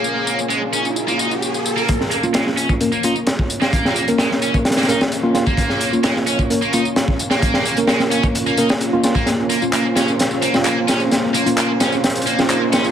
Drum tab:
HH |--------------------------------|x---x---x---x---x---x---x---x---|x---x-x-x---x---xxxxx---x---x---|x---x---x---x---x---x---x---x---|
TB |x---x-x-x---x-x-x-x-x-x-x-x-x-x-|x---x-x-x---x-x-x-x-x-x-x---x-x-|x---x-x-x---x-x-x-x-x-x-x---x-x-|x---x-x-x---x-x-x-x-x-x-x---x-x-|
CP |--------------------------------|--------------------------------|--------------------------------|--------------------------------|
SD |--------------------------------|--o-----o-o-------------o-----o-|--o-----o-o-----oooo--o-----o---|--o-----o-o-------------o-----o-|
BD |--------------------------------|o-------------o-----------o-----|o-------------o---------------o-|o-------------o-----------o-----|

HH |x---x-x-x---x---x---x---x---x---|x---x---x---x---x---x---x---x---|x---x-x-x---x---xxxxx---x---x---|
TB |x---x-x-x-x-x-x-x-x-x-x-x---x-x-|x---x-x-x---x-x-x-x-x-x-x---x-x-|x---x-x-x---x-x-x-x-x-x-x---x-x-|
CP |--------------------------------|--------x---------------x-------|--------x---------------x-------|
SD |--o-----o-o-----------o-----o---|o-----------o---o-----o-----o---|o-----------o---o-----o-----o---|
BD |o-------------o---------------o-|--------------------------------|--------------------------------|